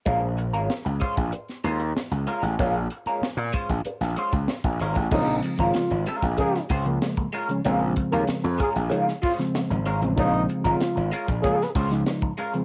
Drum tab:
CC |----------------|----------------|x---------------|----------------|
HH |x-xx--xxxxxx--xx|xxxx-xxxxxxx-xxx|-xxxxxxxx-oxxxxx|x-xxxxxxx-oxxxxx|
SD |----o----o--o---|----o----o--o---|----o----o--o---|----o----o-oo---|
BD |o-----oo--------|o-----oo---o-o-o|o--o---oo-o--o--|--o---o---o-----|

CC |----------------|
HH |xxxxxxxxx-oxx-xx|
SD |----o----o-oo---|
BD |o--o---oo-o--o--|